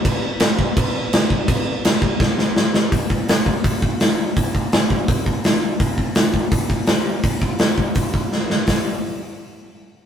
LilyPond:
\new DrumStaff \with { instrumentName = "Drums" } \drummode { \time 4/4 \tempo 4 = 167 <cymc bd>4 <cymc sn>8 bd8 <cymc bd>4 <cymc sn>8 bd8 | <cymc bd>4 <cymc sn>8 bd8 <bd sn>8 sn8 sn8 sn8 | <hho bd>8 bd8 <hho sn>8 bd8 <hho bd>8 bd8 <hho sn>4 | <hho bd>8 bd8 <hho sn>8 bd8 <hho bd>8 bd8 <hho sn>4 |
<hho bd>8 bd8 <hho sn>8 bd8 <hho bd>8 bd8 <hho sn>4 | <hho bd>8 bd8 <hho sn>8 bd8 <hho bd>8 bd8 sn8 sn8 | <hho bd sn>4 r4 r4 r4 | }